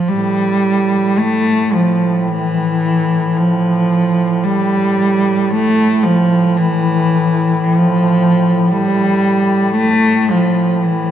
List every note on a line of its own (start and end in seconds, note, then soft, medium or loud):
0.00 0.10 F3 medium
0.09 11.11 A2 soft
0.09 1.20 G3 medium
1.18 1.75 A3 medium
1.74 2.29 F3 medium
2.28 3.38 E3 medium
3.37 4.45 F3 medium
4.44 5.52 G3 medium
5.51 6.05 A3 loud
6.04 6.58 F3 medium
6.57 7.65 E3 medium
7.64 8.73 F3 medium
8.71 9.75 G3 medium
9.76 10.32 A3 loud
10.30 10.84 F3 medium
10.83 11.11 E3 medium